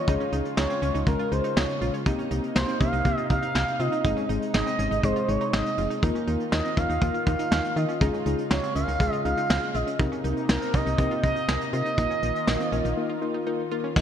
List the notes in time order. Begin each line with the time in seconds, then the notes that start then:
Already playing: F4 C#5
0.08 C#2 C#3 G#3 C#4 D#4 F4 G#4, kick, closed hi-hat
0.20 C#4, closed hi-hat
0.32 C#2 G#3 C#4 D#4 F4 G#4, closed hi-hat
0.45 closed hi-hat
0.57 C#2 G#3 C#4 D#4 F4 G#4 C#5, snare
0.70 C4, closed hi-hat
0.82 C#2 G#3 C#4 F4 G#4, closed hi-hat
0.94 C#2 D#4, closed hi-hat
1.07 C#2 G#3 C#4 F4 A#4, kick, closed hi-hat
1.19 F4, closed hi-hat
1.32 C#2 G#3 C#4 D#4 F4 G#4 C5, closed hi-hat
1.44 D#4, closed hi-hat
1.56 C#2 G#3 C#4 D#4 F4 G#4 C#5, snare
1.69 closed hi-hat
1.81 A#1 G#3 C#4 F4 G#4, closed hi-hat
1.94 C#4, closed hi-hat
2.06 C2 C3 A#3 C4 D#4 G4, kick, closed hi-hat
2.19 C#4, closed hi-hat
2.31 C2 A#3 C4 D#4 G4, closed hi-hat
2.43 closed hi-hat
2.56 C2 A#3 C4 D#4 G4 C5, snare
2.68 C4, closed hi-hat
2.80 C2 A#3 C4 C#4 D#4 G4 F5, kick, closed hi-hat
2.93 C2 D#4, closed hi-hat
3.05 C2 A#3 C4 D#4 G4, kick, closed hi-hat
3.18 F4, closed hi-hat
3.30 C2 A#3 C4 D#4 G4 F5, kick, closed hi-hat
3.42 D#4, closed hi-hat
3.55 C2 A#3 C4 D#4 G4, snare
3.68 closed hi-hat
3.79 C3 A#3 C4 D#4 F4 D#5, closed hi-hat
3.92 D#4, closed hi-hat
4.04 G#1 G#3 C4 D#4 G#4, kick, closed hi-hat
4.17 C#4, closed hi-hat
4.29 G#1 G#3 C4 D#4 G#4, closed hi-hat
4.42 closed hi-hat
4.54 G#1 G#3 C4 D#4 G#4 D#5, snare
4.66 C4, closed hi-hat
4.79 G#1 G#3 C4 C#4 D#4 G#4, closed hi-hat
4.91 G#1 D#4, closed hi-hat
5.03 G#1 G#3 C4 D#4 G#4 C5, kick, closed hi-hat
5.16 F4, closed hi-hat
5.28 G#1 G#3 C4 D#4 G#4 C#5, closed hi-hat
5.41 D#4, closed hi-hat
5.53 G#1 G#3 C4 D#4 G#4 D#5, snare
5.66 closed hi-hat
5.78 F1 G#3 C4 D#4 F4 G#4, closed hi-hat
5.90 D#4, closed hi-hat
6.03 D#2 D#3 A#3 D#4 F4 A#4, kick, closed hi-hat
6.15 C#4, closed hi-hat
6.27 D#2 A#3 D#4 F4 A#4, closed hi-hat
6.40 closed hi-hat
6.52 D#2 A#3 D#4 F4 A#4 D#5, snare
6.65 C4, closed hi-hat
6.77 D#2 A#3 C#4 D#4 F4 A#4 F5, kick, closed hi-hat
6.89 D#2 D#4, closed hi-hat
7.02 D#2 A#3 D#4 F4 A#4, kick, closed hi-hat
7.14 F4, closed hi-hat
7.27 D#2 A#3 D#4 F4 A#4 F5, kick, closed hi-hat
7.39 D#4, closed hi-hat
7.51 D#2 A#3 D#4 F4 A#4, snare
7.64 closed hi-hat
7.76 D#3 A#3 D#4 F4 A#4 D#5, closed hi-hat
7.89 C#4, closed hi-hat
8.01 C#2 C#3 G#3 C#4 D#4 F4 G#4, kick, closed hi-hat
8.13 C#4, closed hi-hat
8.26 C#2 G#3 C#4 D#4 F4 G#4, closed hi-hat
8.39 closed hi-hat
8.51 C#2 G#3 C#4 D#4 F4 G4 C#5, snare
8.63 C4, closed hi-hat
8.75 C#2 G#3 C#4 F4 A#4 F5, closed hi-hat
8.88 C#2 D#4, closed hi-hat
9.00 C#2 G#3 C#4 F4 G#4, kick, closed hi-hat
9.13 F4, closed hi-hat
9.25 C#2 G#3 C#4 D#4 F4 G#4 F5, closed hi-hat
9.37 D#4, closed hi-hat
9.50 C#2 G#3 C#4 D#4 F4 G#4, snare
9.63 closed hi-hat
9.75 A#1 G#3 C#4 F4 G#4 D#5, closed hi-hat
9.87 C#4, closed hi-hat
9.99 C2 C3 A#3 C4 D#4 G4 A#4, kick, closed hi-hat
10.12 C#4, closed hi-hat
10.24 C2 C4 D#4 G4 A#4, closed hi-hat
10.37 closed hi-hat
10.49 C2 C4 D#4 G4 A#4, snare
10.61 C4, closed hi-hat
10.74 C2 C4 C#4 D#4 G4 A#4 D#5, kick, closed hi-hat
10.86 C2 D#4, closed hi-hat
10.98 C2 C4 D#4 G4 A#4, kick, closed hi-hat
11.11 F4, closed hi-hat
11.23 C2 C4 D#4 G4 A#4 D#5, kick, closed hi-hat
11.36 D#4, closed hi-hat
11.48 C2 C4 D#4 G4 A#4, snare
11.61 closed hi-hat
11.73 C3 C4 D#4 F4 G4 A#4 D#5, closed hi-hat
11.86 D#4, closed hi-hat
11.98 A#1 D#3 A#3 D#4 F4 A#4, kick, closed hi-hat
12.10 C#4, closed hi-hat
12.23 A#1 A#3 D#4 F4 A#4, closed hi-hat
12.35 closed hi-hat
12.47 A#1 A#3 D#4 F4 A#4, snare
12.60 C4, closed hi-hat
12.72 A#1 A#3 C#4 D#4 F4 A#4, closed hi-hat
12.85 A#1 D#4, closed hi-hat
12.97 A#3 D#4 F4 A#4
13.10 F4
13.22 A#3 D#4 F4 A#4
13.34 D#4
13.47 A#3 D#4 F4 A#4
13.71 A#3 D#4 F4 A#4
13.84 C#4
13.96 D#2 D#3 A#3 D#4 F4 A#4 D#5, kick, crash